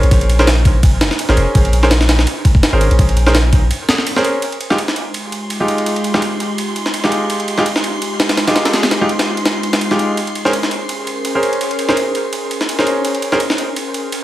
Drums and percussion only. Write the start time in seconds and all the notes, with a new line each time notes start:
0.03 ride
0.11 kick, ride
0.21 ride
0.30 ride
0.39 snare
0.47 snare, ride
0.65 kick, ride
0.83 kick, ride
1.01 snare, ride
1.11 snare
1.19 ride
1.29 snare
1.37 ride
1.55 kick, ride
1.65 ride
1.73 ride
1.83 snare
1.91 snare, ride
2.01 snare
2.09 snare, ride
2.19 snare
2.27 ride
2.45 kick, ride
2.55 kick
2.63 snare, ride
2.81 ride
2.91 ride
2.99 kick, ride
3.09 ride
3.17 ride
3.26 snare
3.35 snare, ride
3.53 kick, ride
3.71 ride
3.89 snare, ride
3.98 snare
4.07 ride
4.16 snare
4.25 ride
4.42 ride
4.52 ride
4.61 ride
4.70 snare
4.78 ride
4.88 snare
4.96 ride
5.14 ride
5.32 ride
5.50 ride
5.68 ride
5.78 ride
5.86 ride
5.96 ride
6.04 ride
6.14 snare
6.22 ride
6.40 ride
6.58 ride
6.76 ride
6.86 snare
6.94 ride
7.04 snare
7.12 ride
7.30 ride
7.40 ride
7.48 ride
7.58 snare
7.66 ride
7.76 snare
7.84 ride
8.02 ride
8.20 snare, ride
8.29 snare, ride
8.37 snare, ride
8.47 snare, ride
8.56 snare, ride
8.65 snare, ride
8.73 snare, ride
8.83 snare, ride
8.91 snare, ride
9.09 ride
9.19 snare, ride
9.37 ride
9.46 snare, ride
9.63 ride
9.73 snare, ride
9.81 ride
9.91 snare
9.99 ride
10.17 ride
10.27 ride
10.35 ride
10.45 snare
10.53 ride
10.63 snare
10.71 ride
10.89 ride
11.07 ride
11.25 ride
11.43 ride
11.53 ride
11.61 ride
11.71 ride
11.79 ride
11.89 snare
11.97 ride
12.15 ride
12.33 ride
12.51 ride
12.61 snare
12.69 ride
12.79 snare
12.87 ride
13.05 ride
13.15 ride
13.22 ride
13.32 snare
13.40 ride
13.50 snare
13.58 ride
13.76 ride
13.94 ride
14.12 ride